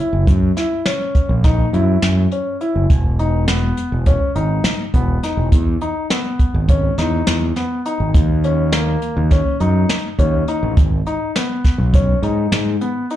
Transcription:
0.00 E4
0.13 F#1
0.27 F#2, kick, closed hi-hat
0.57 E4, snare, closed hi-hat
0.86 C#4, snare, closed hi-hat
1.15 kick, closed hi-hat
1.29 A#1
1.44 D#4, kick, snare, closed hi-hat
1.73 F#2 E4, closed hi-hat
2.02 F#2, snare, closed hi-hat
2.31 C#4, closed hi-hat
2.61 E4, closed hi-hat
2.76 F#1
2.90 E1, kick, closed hi-hat
3.19 D#4, closed hi-hat
3.48 B3, snare, closed hi-hat
3.77 closed hi-hat
3.92 E1
4.06 C#4, kick, closed hi-hat
4.35 G#1 D#4, closed hi-hat
4.64 snare, closed hi-hat
4.94 E1 B3, kick, closed hi-hat
5.23 D#4, snare, closed hi-hat
5.37 E1
5.52 E2, kick, closed hi-hat
5.81 D#4, closed hi-hat
6.10 B3, snare, closed hi-hat
6.39 kick, closed hi-hat
6.54 G#1
6.68 C#4, kick, closed hi-hat
6.98 E2 D#4, snare, closed hi-hat
7.27 E2, snare, closed hi-hat
7.56 B3, snare, closed hi-hat
7.85 D#4, closed hi-hat
8.00 G#1
8.14 D#2, kick, closed hi-hat
8.44 C#4, closed hi-hat
8.72 A#3, snare, closed hi-hat
9.02 closed hi-hat
9.17 D#2
9.31 C#4, kick, snare, closed hi-hat
9.60 F#2 D#4, closed hi-hat
9.89 snare, closed hi-hat
10.19 D#2 C#4, kick, closed hi-hat
10.48 D#4, closed hi-hat
10.63 A1
10.77 G#1, kick, closed hi-hat
11.06 D#4, closed hi-hat
11.36 B3, snare, closed hi-hat
11.64 kick, snare, closed hi-hat
11.78 B1
11.94 C#4, kick, closed hi-hat
12.23 G#2 D#4, closed hi-hat
12.52 G#2, snare, closed hi-hat
12.81 B3, closed hi-hat
13.10 D#4, closed hi-hat

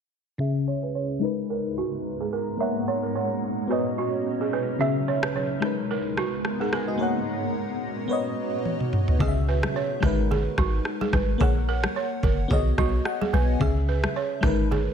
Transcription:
0.38 C#3 G#3 C#4 G#4 E5
0.68 C#5
0.83 B4
0.95 C#5
1.20 G#2 G#3 B3 D#4 A#4 A#5
1.24 B4
1.50 A#4
1.78 F#4
2.21 G#4
2.33 A#4
2.57 A#2 A#3 C#4 F#4 A#4 C#5 E5
2.62 F#5
2.88 C#5
3.03 A#4
3.16 C#5
3.67 B2 F#3 B3 C#4 D#4 F#4 B4 C#5
3.72 D#5
3.98 F#4
4.41 G#4
4.53 B4
4.79 C#3 G#3 C#4 G#4 E5
5.08 C#5
5.23 B4, cross-stick
5.36 C#5
5.60 G#2 G#3 B3 D#4 A#4 A#5, cross-stick
5.65 B4
5.91 A#4
6.17 F#4, cross-stick
6.45 cross-stick
6.60 G#4 A#4 F#5
6.73 A#4 B4 G#5, cross-stick
6.88 F#4 D#5
6.98 A#2 A#3 C#4 F#4 A#4 C#5
7.03 F#5
8.08 B2 B3 D#4 B4 C#5
8.13 D#5
8.65 high tom
8.80 mid tom
8.93 mid tom
9.08 floor tom
9.19 C#2 C#3 C#4 G#4 D#5, kick, low conga
9.28 E5
9.49 B4
9.63 cross-stick, high conga
9.76 C#5
10.00 G#1 G#3 D#4 A#4, kick, cross-stick, low conga
10.05 B4
10.31 G#4, low conga
10.58 G#1 F#4, kick, cross-stick, high conga
10.85 cross-stick
11.01 G#4, high conga
11.13 G#1 B4, kick, cross-stick, high conga
11.38 A#1 A#3 G#4 A#4 C#5, kick, low conga
11.43 F#5
11.69 A#4
11.84 cross-stick, high conga
11.96 C#5
12.23 F#1 A#4, kick, low conga
12.48 B1 B3 F#4 G#4 C#5, kick, low conga
12.53 D#5
12.78 B1 F#4 D#5, kick, cross-stick, high conga
13.05 F#5, cross-stick
13.21 G#4, high conga
13.33 B1 B4 G#5, high conga
13.59 C#2 C#3 C#4 G#4 E5, kick, low conga
13.89 B4
14.04 cross-stick, high conga
14.16 C#5
14.41 G#1 G#3 D#4 A#4, kick, cross-stick, low conga
14.46 B4
14.71 G#4, low conga

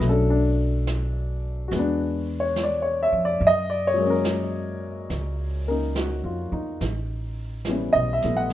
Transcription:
0.00 B1 F#3 A3, brush sweep, snare
0.06 C#4 A4
0.10 D4
0.30 D4
0.87 snare, hi-hat pedal
1.68 E2 F#4, brush sweep, snare
1.72 G#3 B3
1.79 D4
2.40 C#5
2.56 snare, hi-hat pedal
2.63 D5
2.82 C#5
3.03 E5
3.12 F2
3.25 D5
3.40 F#2, brush sweep
3.47 D#5
3.70 D5
3.87 C#5
3.94 F#3 G#3
4.01 A#3 C#4
4.10 A#4
4.25 snare, hi-hat pedal
5.10 C#2, brush sweep, snare
5.68 A#3 C#4 D#4 A#4
5.95 F#4, snare, hi-hat pedal
6.24 F2 F4
6.52 E2 D#4
6.81 A1, brush sweep, snare
7.65 E3 G3 B3, snare, hi-hat pedal
7.70 C#4
7.93 B1 D#5
8.13 E5
8.22 A#1 G3 A3 B3, snare
8.37 F#5
8.50 brush sweep, snare

